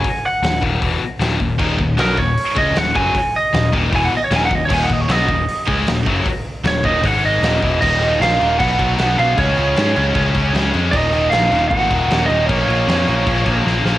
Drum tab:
CC |--------|x-------|--------|x-------|
HH |o-o-o-o-|--o-o-o-|o-o-o-o-|--o-o-o-|
SD |--o---o-|--o---o-|--o---o-|--o---o-|
BD |o--oo--o|oo-o-o-o|o--oo--o|oo-o-o-o|

CC |--------|xxxxxxxx|xxxxxxxx|xxxxxxxx|
HH |o-o-o-o-|--------|--------|--------|
SD |--o---o-|--o---o-|--o---o-|--o---o-|
BD |o--oo--o|o---oo--|o---oo--|o---oo--|

CC |xxxxxx--|
HH |--------|
SD |--o---oo|
BD |o---oo--|